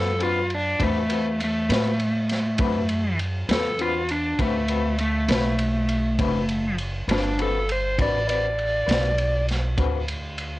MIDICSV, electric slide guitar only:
0, 0, Header, 1, 2, 480
1, 0, Start_track
1, 0, Tempo, 598205
1, 2085, Time_signature, 12, 3, 24, 8
1, 8500, End_track
2, 0, Start_track
2, 0, Title_t, "Electric slide guitar"
2, 0, Program_c, 0, 29
2, 0, Note_on_c, 0, 69, 66
2, 165, Note_off_c, 0, 69, 0
2, 185, Note_on_c, 0, 65, 66
2, 408, Note_off_c, 0, 65, 0
2, 438, Note_on_c, 0, 62, 73
2, 655, Note_off_c, 0, 62, 0
2, 667, Note_on_c, 0, 57, 75
2, 1122, Note_off_c, 0, 57, 0
2, 1156, Note_on_c, 0, 57, 79
2, 2549, Note_off_c, 0, 57, 0
2, 2819, Note_on_c, 0, 69, 80
2, 3045, Note_off_c, 0, 69, 0
2, 3059, Note_on_c, 0, 65, 70
2, 3285, Note_off_c, 0, 65, 0
2, 3295, Note_on_c, 0, 62, 75
2, 3523, Note_off_c, 0, 62, 0
2, 3542, Note_on_c, 0, 57, 76
2, 3999, Note_off_c, 0, 57, 0
2, 4016, Note_on_c, 0, 57, 78
2, 5419, Note_off_c, 0, 57, 0
2, 5706, Note_on_c, 0, 62, 78
2, 5929, Note_off_c, 0, 62, 0
2, 5953, Note_on_c, 0, 69, 78
2, 6172, Note_off_c, 0, 69, 0
2, 6194, Note_on_c, 0, 72, 84
2, 6413, Note_off_c, 0, 72, 0
2, 6434, Note_on_c, 0, 74, 64
2, 6651, Note_off_c, 0, 74, 0
2, 6661, Note_on_c, 0, 74, 81
2, 7585, Note_off_c, 0, 74, 0
2, 8500, End_track
0, 0, End_of_file